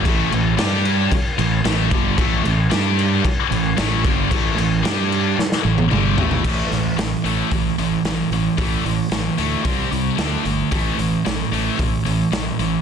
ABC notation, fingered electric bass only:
X:1
M:4/4
L:1/8
Q:1/4=112
K:Am
V:1 name="Fingered electric bass" clef=bass
A,,, A,,, G,,2 z A,,, A,,, G,,, | A,,, A,,, G,,2 z A,,, A,,, G,,, | A,,, A,,, G,,2 z A,,, G,,, A,,, | A,,, A,,, A,,, A,,, A,,, A,,, A,,, A,,, |
A,,, A,,, A,,, D,, C,, C,, D,, G,,, | A,,, A,,, A,,, A,,, A,,, A,,, A,,, A,,, |]